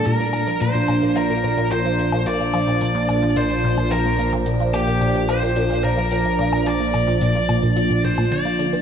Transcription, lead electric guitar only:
\new Staff \with { instrumentName = "Lead electric guitar" } { \time 4/4 \key bes \major \tempo 4 = 109 bes'4 c''4 bes'4 c''4 | d''2 c''4 bes'8. r16 | r8 g'4 c''4 bes'4. | d''2~ d''8 c''8 d''4 | }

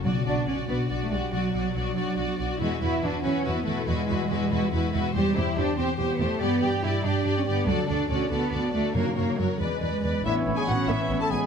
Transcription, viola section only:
\new Staff \with { instrumentName = "Viola section" } { \time 6/8 \key b \minor \tempo 4. = 94 << { fis'8 fis'8 fis'8 fis'8 fis'8 fis'8 | fis'8 fis'8 fis'8 fis'8 fis'8 fis'8 | e'8 e'8 e'8 e'8 e'8 e'8 | e'8 e'8 e'8 e'8 e'8 e'8 |
g'8 g'8 g'8 g'8 g'8 g'8 | g'8 g'8 g'8 g'8 g'8 g'8 | fis'8 fis'8 fis'8 fis'8 fis'8 fis'8 | fis'8 fis'8 fis'8 b'8 b'8 b'8 |
\key a \major b8 b8 b8 b8 b8 b8 | } \\ { r2. | r2. | r2. | r2. |
r2. | r2. | r2. | r2. |
cis'2. | } >> }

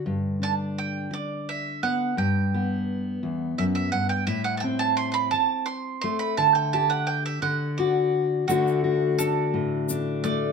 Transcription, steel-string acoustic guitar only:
\new Staff \with { instrumentName = "Steel-string acoustic guitar" } { \time 6/8 \key d \mixolydian \tempo 4. = 57 << { r8 d'2 b8 | r8 b2~ b8 | r8 c'2 a8 | r8 g'4 r8 fis'4 |
<a d' fis'>8 fis'8 d'4 d'4 | } \\ { <g, d>2. | g,4. e,8 fis,8 g,8 | a,4. r4. | d4. d4. |
d4. a,4 a8 | } >> }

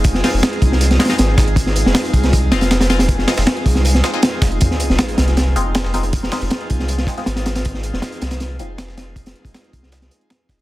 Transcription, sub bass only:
\new Staff \with { instrumentName = "Sub bass" } { \clef bass \time 4/4 \key f \minor \tempo 4 = 158 f,,8 r16 f,,16 r8 c,4 r8 aes,,4~ | aes,,8. f,,16 r8 c,4 f,,4.~ | f,,8 r16 f,,16 r8 c,4 r4 f,,8 | r8. f,,16 r8 c,4 f,,4.~ |
f,,8 r16 f,,16 r8 c,4 r8 aes,,4~ | aes,,8. f,,16 r8 c,4 f,,4.~ | f,,8 r16 f,,16 r8 c,4 r4 f,,8 | }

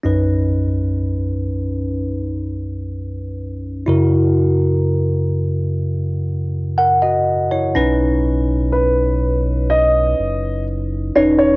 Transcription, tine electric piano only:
<<
  \new Staff \with { instrumentName = "Tine electric piano" } { \time 4/4 \key b \major \tempo 4 = 62 << { r1 | r2. <ais' fis''>16 <fis' dis''>8 <e' cis''>16~ | <e' cis''>16 r2. r8. | } \\ { <cis' dis' b'>1 | <e' fis' ais'>2~ <e' fis' ais'>8 r4. | <cis' dis' b'>2 r4. <cis' dis' b'>8 | } >> }
  \new Staff \with { instrumentName = "Tine electric piano" } { \clef bass \time 4/4 \key b \major <b,, fis,>1 | <fis, cis>1 | r1 | }
>>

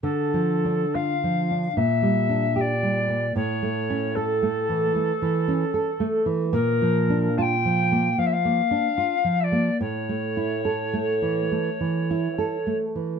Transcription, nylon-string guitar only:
\new Staff \with { instrumentName = "Nylon-string guitar" } { \time 4/4 \key a \phrygian \tempo 4 = 74 \tuplet 3/2 { d8 f8 d'8 f'8 f8 d'8 bes,8 g8 d'8 g'8 g8 bes8 } | \tuplet 3/2 { a,8 a8 cis'8 a'8 a8 e8 a8 e8 cis'8 a'8 a8 e8 } | \tuplet 3/2 { bes,8 f8 d'8 f'8 f8 bes8 f8 bes8 d'8 f'8 f8 bes8 } | \tuplet 3/2 { a,8 a8 e'8 a'8 a8 e8 a8 e8 e'8 a'8 a8 e8 } | }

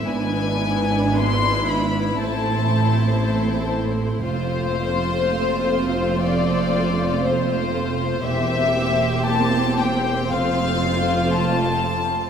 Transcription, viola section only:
\new Staff \with { instrumentName = "Viola section" } { \time 4/4 \key f \lydian \tempo 4 = 59 << { d'2 c'2 | c'1 | c'1 | } \\ { b2 a2 | a1 | bes2 a2 | } >> }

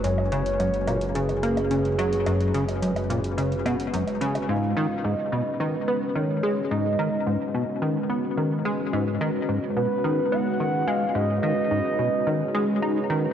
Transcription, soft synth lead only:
\new Staff \with { instrumentName = "Soft synth lead" } { \time 4/4 \key gis \minor \tempo 4 = 108 cis''2 gis'2~ | gis'2. r4 | eis''4 dis''4 b'4 cis''4 | dis''2 r2 |
r4. b'4 fis''4 eis''8 | dis''8 dis''2. r8 | }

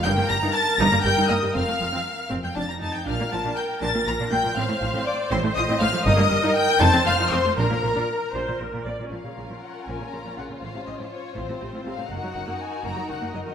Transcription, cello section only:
\new Staff \with { instrumentName = "Cello section" } { \clef bass \time 6/8 \key bes \major \tempo 4. = 80 g,16 g,16 g,16 g,16 r8 g,16 g,16 g,16 g,16 g,16 g,16 | f,16 f,16 f,16 f,16 r8 f,16 f,16 f,16 f,16 f,16 f,16 | bes,16 bes,16 bes,16 bes,16 r8 bes,16 bes,16 bes,16 bes,16 bes,16 bes,16 | a,16 a,16 a,16 a,16 r8 a,16 a,16 a,16 a,16 a,16 a,16 |
g,16 g,16 g,16 g,16 r8 f,16 f,16 f,16 f,16 f,16 f,16 | bes,16 bes,16 bes,16 bes,16 r8 bes,16 bes,16 bes,16 bes,16 bes,16 bes,16 | \key bes \minor bes,16 bes,16 bes,16 bes,16 r8 bes,16 bes,16 bes,16 bes,16 bes,16 bes,16 | a,16 a,16 a,16 a,16 r8 a,16 a,16 a,16 a,16 a,16 a,16 |
ges,16 ges,16 ges,16 ges,16 r8 ges,16 ges,16 ges,16 ges,16 ges,16 ges,16 | }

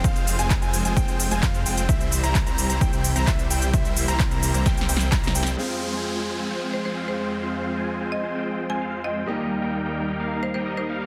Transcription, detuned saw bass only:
\new Staff \with { instrumentName = "Detuned saw bass" } { \clef bass \time 4/4 \key f \minor \tempo 4 = 130 f,,8. f,,8 f,,8 f,,16 f,,16 f,,8 f,,16 f,8 f,,8 | c,8. c,8 c,8 c,16 c,16 c,8 c,16 c,8 c,8 | c,8. c,8 c,8 c,16 c,16 c,16 c,8 c,16 c,16 c,8 | r1 |
r1 | r1 | }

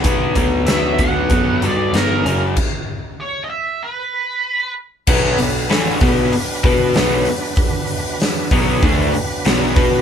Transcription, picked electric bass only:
\new Staff \with { instrumentName = "Picked electric bass" } { \clef bass \time 4/4 \key b \minor \tempo 4 = 96 b,,8 d,8 d,8 d,8 fis,8 g,8 g,,8 fis,,8 | r1 | b,,8 b,,8 a,,8 b,,8 r8 b,8 b,,8 r8 | r4. b,,8 d,8 r8 b,,8 b,8 | }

